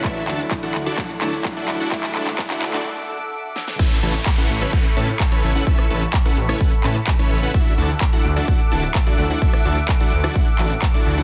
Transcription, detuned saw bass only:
\new Staff \with { instrumentName = "Detuned saw bass" } { \clef bass \time 4/4 \key a \major \tempo 4 = 128 r8 d,8 r8 d,8 r8 d,8 r8 d,8 | r8 d,8 r8 d,8 r2 | r8 a,,8 r8 a,,8 r8 a,8 r8 a,,8 | r8 a,,8 r8 a,,8 r8 a,8 r8 a,,8 |
r8 d,8 r8 d,8 r8 d,,8 r8 d,8 | r8 d,8 r8 d,8 r8 a,,8 r8 d,8 | }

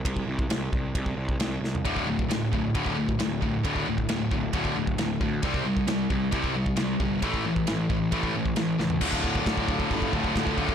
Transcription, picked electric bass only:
\new Staff \with { instrumentName = "Picked electric bass" } { \clef bass \time 4/4 \key a \phrygian \tempo 4 = 134 c,8 c,8 c,8 c,8 c,8 c,8 c,8 c,8 | d,,8 d,,8 d,,8 d,,8 d,,4 d,,8 d,,8 | d,,8 d,,8 d,,8 d,,8 d,,8 d,,8 d,,8 d,8 | c,8 c,8 c,8 c,8 c,4 c,8 g,,8 |
a,,8 a,,8 a,,8 a,,8 a,,8 a,,8 a,,8 cis,8 | \key d \minor d,,8 d,,8 d,,4 g,,8 d,,8 d,,8 d,,8 | }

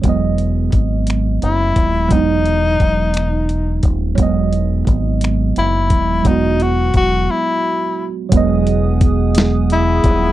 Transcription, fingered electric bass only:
\new Staff \with { instrumentName = "Fingered electric bass" } { \clef bass \time 6/8 \key e \major \tempo 4. = 58 e,,4 gis,,4 fis,,8 dis,,8 | e,,4 e,,4. dis,,8 | e,,4 gis,,4 fis,,8 dis,,8 | e,,4 e,,8 r4. |
e,,2~ e,,8 dis,,8 | }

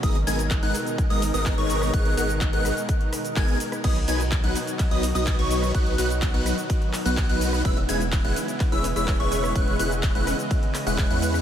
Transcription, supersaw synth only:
\new Staff \with { instrumentName = "Supersaw synth" } { \time 4/4 \key b \major \tempo 4 = 126 <gis b dis' ais' dis''>16 r16 <gis b dis' ais' gis''>16 r8 <gis b dis' ais' fis''>16 r8. <gis b dis' ais' dis''>16 r16 <gis b dis' ais' dis''>8 <gis b dis' ais' cis''>8. | <gis b dis' ais' fis''>8 <gis b dis' ais' fis''>16 r8 <gis b dis' ais' fis''>8 r4 r16 <gis b dis' ais' gis''>8 r8 | <fis b dis' b' dis''>16 r16 <fis b dis' b' gis''>16 r8 <fis b dis' b' fis''>16 r8. <fis b dis' b' dis''>16 r16 <fis b dis' b' dis''>8 <fis b dis' b' cis''>8. | <fis b dis' b' fis''>8 <fis b dis' b' fis''>16 r8 <fis b dis' b' fis''>8 r4 <fis b dis' b' fis''>8 <fis b dis' b' fis''>8. |
<gis cis' e' b' e''>16 r16 <gis cis' e' b' gis''>16 r8 <gis cis' e' b' fis''>16 r8. <gis cis' e' b' e''>16 r16 <gis cis' e' b' e''>8 <gis cis' e' b' cis''>8. | <gis cis' e' b' fis''>8 <gis cis' e' b' fis''>16 r8 <gis cis' e' b' fis''>8 r4 <gis cis' e' b' fis''>8 <gis cis' e' b' fis''>8. | }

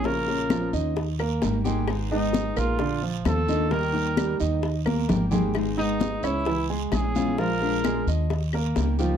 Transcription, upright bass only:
\new Staff \with { instrumentName = "Upright bass" } { \clef bass \time 4/4 \key dis \phrygian \tempo 4 = 131 ais,,4. dis,4. gis,,4~ | gis,,4. ais,,4. dis,4~ | dis,4. dis,4. gis,,4~ | gis,,4. cis,4. ais,,4~ |
ais,,4. dis,4. cis,4 | }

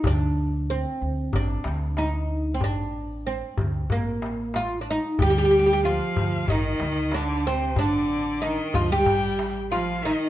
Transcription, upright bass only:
\new Staff \with { instrumentName = "Upright bass" } { \clef bass \time 4/4 \tempo 4 = 93 d,4. d,8 a,,8 d,4. | a,,4. d,8 a,,2 | d,4. d,8 a,,8 d,4. | a,,4. d,8 a,,2 | }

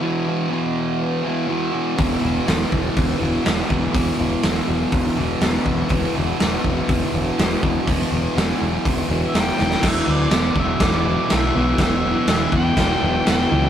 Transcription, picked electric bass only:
\new Staff \with { instrumentName = "Picked electric bass" } { \clef bass \time 4/4 \key e \minor \tempo 4 = 122 r1 | e,,8 e,,8 e,,8 e,,8 e,,8 e,,8 e,,8 e,,8 | e,,8 e,,8 e,,8 e,,8 e,,8 e,,8 e,,8 e,,8 | e,,8 e,,8 e,,8 e,,8 e,,8 e,,8 e,,8 e,,8 |
e,,8 e,,8 e,,8 e,,8 e,,8 e,,8 e,,8 e,,8 | e,,8 d,8 e,,8 e,,8 e,,4 b,,8 b,,8 | e,,4 e,,8 e,8 e,,8 e,,8 e,,8 cis,8 | }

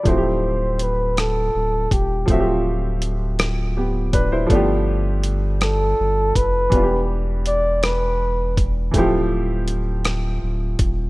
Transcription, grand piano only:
\new Staff \with { instrumentName = "Grand piano" } { \time 6/8 \key d \dorian \tempo 4. = 54 << { r2. | r2 <b g'>8 <d' b'>16 <e' c''>16~ | <e' c''>16 r2 r8. | r2. |
r2. | } \\ { <f a c' e' fis' g'>2. | <f a c' fis' g' e''>2. | <f a b d' g'>2. | <e g b d' f' g'>2. |
<e f a c' e' g'>2. | } >> }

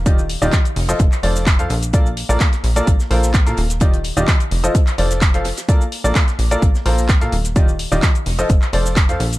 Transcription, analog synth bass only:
\new Staff \with { instrumentName = "Analog synth bass" } { \clef bass \time 4/4 \key bes \major \tempo 4 = 128 ees,,8. ees,,16 r8 f,,16 r16 f,,16 r16 f,,8. f,16 bes,,8~ | bes,,8. bes,,16 r8 bes,,16 r16 bes,,16 r16 bes,,8. bes,16 ees,,8~ | ees,,8. ees,,16 r8 f,,16 r8. f,,4~ f,,16 r16 | r8. bes,,16 r8 bes,,16 r16 bes,,16 r16 bes,,8. bes,16 ees,,8~ |
ees,,8. ees,,16 r8 f,,16 r16 f,,16 r16 f,,8. f,16 bes,,8 | }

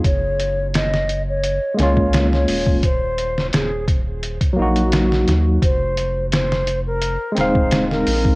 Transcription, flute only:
\new Staff \with { instrumentName = "Flute" } { \time 4/4 \key f \phrygian \tempo 4 = 86 des''4 ees''8. des''8. des''8. des''8. | c''4 aes'8 r4 ges'4~ ges'16 r16 | c''4 c''8. bes'8. c''8. bes'8. | }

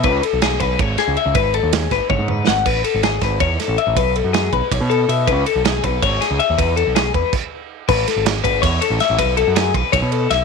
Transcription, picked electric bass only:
\new Staff \with { instrumentName = "Picked electric bass" } { \clef bass \time 7/8 \key a \lydian \tempo 4 = 161 cis,8 r16 b,,8. b,,8 gis,,8 r16 cis,16 r16 cis,16 | gis,,8. dis,8. gis,,16 r16 gis,,16 gis,8. gis,,8 | a,,8 r16 gis,,8. gis,,8 e,8 r16 a,,16 r16 a,,16 | b,,8. fis,8. b,,16 r16 b,,16 b,8. b,8 |
cis,8 r16 b,,8. b,,8 gis,,8 r16 cis,16 r16 dis,16 | e,8. b,,8. e,16 r4. r16 | a,,8 r16 gis,,8. gis,,8 e,8 r16 a,,16 r16 a,,16 | b,,8. fis,8. b,,16 r16 b,,16 b,8. b,,8 | }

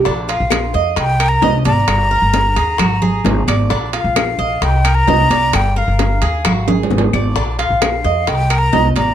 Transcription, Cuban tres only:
\new Staff \with { instrumentName = "Cuban tres" } { \time 4/4 \key bes \major \tempo 4 = 131 d'8 f'4 ees''4 bes'8 ees''8 d''8~ | d''8 bes'4 aes'8 fis'8 aes'4 d''8 | d'8 f'4 ees''4 bes'8 ees''8 d''8~ | d''8 bes'4 aes'8 ges'8 aes'4 d''8 |
d'8 f'4 ees''4 bes'8 ees''8 d''8 | }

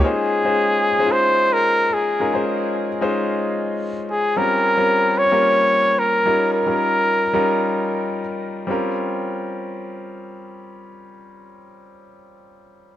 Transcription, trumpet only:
\new Staff \with { instrumentName = "Trumpet" } { \time 4/4 \key bes \dorian \tempo 4 = 111 aes'2 c''8. bes'8. aes'8~ | aes'8 r2. aes'8 | bes'4. des''4. bes'4 | bes'2. r4 |
r1 | r1 | }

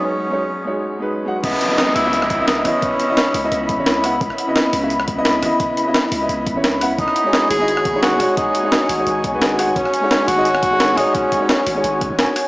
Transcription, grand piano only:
\new Staff \with { instrumentName = "Grand piano" } { \time 4/4 \key cis \minor \tempo 4 = 173 <gis dis' fis' cis''>8. <gis dis' fis' cis''>16 r8. <gis dis' fis' cis''>4 <gis dis' fis' b'>8. <gis dis' fis' fis''>16 r16 | <cis b e' dis''>8. <cis b e' dis''>4 <cis b e' e''>16 r8. <cis b e' dis''>8. <cis b e' dis''>8~ | <cis b e' dis''>8. <cis b e' dis''>16 r8. <cis b e' dis''>4 <cis b e' cis''>8. <cis b e' fis''>16 r16 | r8. <cis b e' dis''>4 <cis b e' e''>16 r8. <cis b e' dis''>8. <cis b e' dis''>8~ |
<cis b e' dis''>8. <cis b e' dis''>16 r8. <cis b e' dis''>4 <cis b e' cis''>8. <cis b e' fis''>16 r16 | r8. <gis dis' fis' cis''>4 <gis dis' fis' dis''>16 r8. <gis dis' fis' cis''>8. <gis dis' fis' cis''>8~ | <gis dis' fis' cis''>8. <gis dis' fis' cis''>16 r8. <gis dis' fis' cis''>4 <gis dis' fis' b'>8. <gis dis' fis' fis''>16 r16 | r8. <gis dis' fis' cis''>4 <gis dis' fis' dis''>16 r8. <gis dis' fis' cis''>8. <gis dis' fis' cis''>8~ |
<gis dis' fis' cis''>8. <gis dis' fis' cis''>16 r8. <gis dis' fis' cis''>4 r4 r16 | }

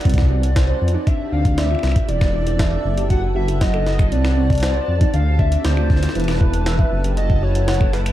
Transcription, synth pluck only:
\new Staff \with { instrumentName = "Synth pluck" } { \time 4/4 \key d \mixolydian \tempo 4 = 118 c'16 r16 c'16 r16 c''16 c''16 r16 ees'16 d'16 r16 d'16 d'16 d''16 f'16 r8 | e'16 r16 e'16 r16 e''16 e''16 r16 g'16 fis'16 r16 fis'16 fis'16 fis''16 a'16 r8 | c'16 r16 c'16 r16 c''16 c''16 r16 ees'16 d'16 r16 d'16 d'16 d''16 f'16 r8 | e'16 r16 e'16 r16 e''16 e''16 r16 g'16 fis'16 r16 fis'16 fis'16 fis''16 a'16 r8 | }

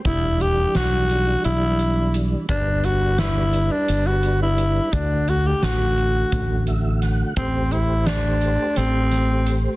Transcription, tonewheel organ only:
<<
  \new Staff \with { instrumentName = "Tonewheel organ" } { \time 7/8 \key a \dorian \tempo 4 = 86 r2. r8 | r2. r8 | r2 r8 e''8 fis''8 | r2. r8 | }
  \new Staff \with { instrumentName = "Tonewheel organ" } { \time 7/8 \key a \dorian <e g d'>2.~ <e g d'>8 | <g d' b'>2.~ <g d' b'>8 | <d a fis'>2.~ <d a fis'>8 | <a g' c''>2.~ <a g' c''>8 | }
>>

